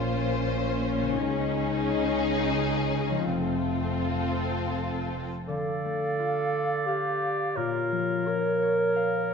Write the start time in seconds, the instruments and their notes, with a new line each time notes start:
Already playing: double bass section A#1, harp A#2 C#4 F4 C5, cello section A#2, french horn section A#3 C#4, viola section C#4, violin section F4 C5
1.02 harp C#3
1.07 harp C#4
1.11 harp D#4
1.16 double bass section C#2, harp G#4
1.20 cello section C#3, french horn section G#3 D#4, violin section D#4 G#4
3.10 harp F3
3.14 harp C4
3.19 harp F4
3.24 harp A4, violin section A4
3.28 double bass section F1, cello section F2, french horn section A3 C4, viola section C4, violin section F4
5.48 harp D3, clarinet A4, oboe D5, flute F5
5.85 harp A3
6.19 harp F4
6.53 harp D5
6.86 clarinet G4, harp F5
7.22 harp D5
7.55 harp A#2, clarinet F4, oboe A#4, flute C#5
7.92 harp F3
8.27 harp F4, clarinet A#4
8.62 harp C#5
8.96 harp F5
9.30 harp C#5